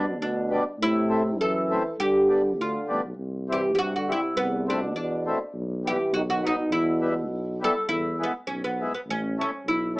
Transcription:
0.00 0.21 G2 loud
0.00 0.19 B2 medium
0.00 0.21 D4 medium
0.20 0.58 D2 medium
0.20 0.63 B2 medium
0.20 0.64 D4 medium
0.50 0.63 G3 medium
0.50 0.64 B3 medium
0.50 0.64 D4 medium
0.79 1.40 A2 loud
0.79 1.40 E4 loud
0.83 1.36 C3 medium
1.09 1.23 A3 medium
1.09 1.23 C4 soft
1.09 1.23 E4 medium
1.39 1.77 F#2 medium
1.39 1.95 E3 medium
1.39 1.95 A4 medium
1.70 1.83 A3 medium
1.70 1.83 C4 medium
1.70 1.83 E4 medium
1.99 2.60 G2 medium
1.99 2.55 D3 medium
1.99 2.60 G4 medium
2.29 2.42 G3 soft
2.29 2.42 B3 medium
2.29 2.42 D4 soft
2.58 2.79 D2 medium
2.58 3.02 D3 medium
2.58 3.02 F4 medium
2.88 3.02 A1 medium
2.88 3.01 G3 medium
2.88 3.02 B3 medium
2.88 3.02 D4 medium
3.04 3.16 B1 medium
3.17 3.78 C2 medium
3.49 3.72 E3 medium
3.49 3.61 G3 medium
3.49 3.62 C4 medium
3.49 3.62 E4 medium
3.49 3.74 G4 medium
3.74 4.15 G2 medium
3.74 3.77 E3 soft
3.74 3.77 G4 medium
3.79 3.93 C3 medium
3.79 3.92 F#4 medium
3.96 4.09 D3 medium
3.96 4.10 F#4 medium
4.08 4.21 G3 medium
4.08 4.21 C4 medium
4.08 4.21 E4 medium
4.08 4.38 E4 medium
4.13 4.36 C3 medium
4.35 4.95 C2 medium
4.35 4.66 B3 medium
4.42 4.69 E2 medium
4.68 4.80 A3 soft
4.68 4.80 C4 medium
4.68 4.95 D4 medium
4.68 4.80 E4 medium
4.75 4.97 B2 medium
4.94 5.32 E2 medium
4.94 5.37 D4 medium
5.01 5.40 B2 medium
5.26 5.38 A3 medium
5.26 5.39 C4 medium
5.26 5.39 E4 medium
5.54 5.92 B1 medium
5.85 5.97 G3 medium
5.85 5.97 B3 soft
5.85 5.98 E4 medium
5.85 6.11 G4 medium
5.89 6.12 E3 medium
6.12 6.50 B1 medium
6.12 6.22 D#3 medium
6.12 6.19 F#4 medium
6.30 6.45 D#3 medium
6.30 6.45 F#4 medium
6.42 6.70 B2 medium
6.42 6.55 F#3 medium
6.42 6.55 B3 medium
6.42 6.56 D#4 medium
6.47 6.72 D#4 medium
6.71 7.30 E2 loud
6.71 7.60 B2 medium
6.71 7.59 E4 medium
7.01 7.14 G3 soft
7.01 7.14 B3 medium
7.01 7.14 E4 medium
7.29 7.67 B1 medium
7.61 7.73 G3 medium
7.61 7.74 B3 medium
7.61 7.74 E4 medium
7.61 7.88 A4 medium
7.88 8.27 E2 medium
7.88 8.22 E4 medium
8.19 8.32 G#3 medium
8.19 8.33 B3 soft
8.19 8.33 E4 medium
8.23 8.30 B3 medium
8.47 8.86 B1 medium
8.47 8.64 C#4 medium
8.64 8.93 B3 medium
8.81 8.93 G#3 medium
8.81 8.92 B3 medium
8.81 8.93 E4 medium
8.94 8.99 B3 medium
9.07 9.45 A1 medium
9.07 9.40 C#4 medium
9.38 9.50 A3 medium
9.38 9.51 C#4 soft
9.38 9.67 C#4 medium
9.38 9.51 E4 soft
9.65 10.00 B1 medium
9.65 9.97 E4 medium
9.96 10.00 A3 medium
9.96 10.00 C#4 soft
9.96 10.00 E4 medium

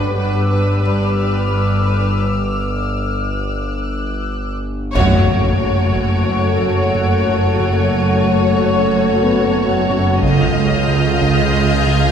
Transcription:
0.00 4.95 G1 medium
0.00 0.16 G3 soft
0.00 0.17 D4 soft
0.00 0.80 D4 soft
0.00 2.19 G4 medium
0.00 0.15 B4 soft
0.00 2.19 B4 soft
0.00 2.19 D5 medium
0.00 0.81 F#5 soft
0.00 4.57 D6 soft
0.16 0.75 G2 soft
0.16 0.49 G3 soft
0.16 0.50 D4 soft
0.16 0.49 B4 soft
0.16 4.58 E6 soft
0.50 0.83 G3 soft
0.50 0.83 D4 soft
0.50 0.81 B4 soft
0.82 1.42 G2 soft
0.82 1.17 G3 soft
0.82 1.16 D4 soft
0.82 1.16 B4 soft
0.82 3.64 F6 soft
1.17 1.50 G3 soft
1.17 1.50 D4 soft
1.17 1.49 B4 soft
1.50 2.10 G2 soft
1.50 1.84 G3 soft
1.50 1.84 D4 soft
1.50 1.83 B4 soft
1.85 2.19 G3 soft
1.85 2.19 D4 soft
1.85 2.19 B4 soft
3.64 4.57 F#6 soft
4.94 10.18 F#1 medium
4.94 10.18 F#1 soft
4.94 10.18 F#2 medium
4.94 5.16 F#2 loud
4.94 10.18 A3 soft
4.94 10.18 F#4 soft
4.94 10.18 A4 medium
4.94 10.18 C#5 soft
4.94 6.90 C#5 soft
4.94 10.18 C#5 medium
4.94 9.87 C#5 soft
4.94 10.18 F#5 medium
4.94 8.16 D7 soft
4.94 taiko soft
4.94 impact soft
5.30 5.50 F#2 soft
5.64 5.83 F#2 soft
5.95 6.15 F#2 medium
5.95 taiko soft
6.29 6.49 F#2 soft
6.61 6.81 F#2 soft
6.95 7.14 F#2 medium
7.29 7.48 F#2 soft
7.60 7.80 F#2 medium
7.94 8.13 F#2 soft
8.16 9.21 D#7 soft
8.26 8.45 F#2 soft
8.56 8.78 F#2 medium
8.56 9.88 C#5 soft
8.92 9.12 F#2 soft
9.23 9.44 F#2 soft
9.23 11.16 B3 soft
9.23 11.17 B4 soft
9.58 9.77 F#2 medium
9.89 10.09 F#2 soft
9.89 11.82 C#4 soft
9.89 11.82 C#5 soft
10.21 12.12 C#2 medium
10.21 12.12 C#2 soft
10.21 10.43 C#3 medium
10.21 12.12 G#3 soft
10.21 12.12 F4 soft
10.21 12.12 G#4 soft
10.21 12.12 D#5 soft
10.21 12.12 F5 soft
10.21 12.12 F6 soft
10.21 12.12 G6 soft
10.21 taiko soft
10.55 10.75 C#3 soft
10.88 11.08 C#3 soft
11.20 11.41 C#3 medium
11.20 taiko soft
11.54 11.73 C#3 soft
11.54 12.12 G#6 soft
11.87 12.06 C#3 soft

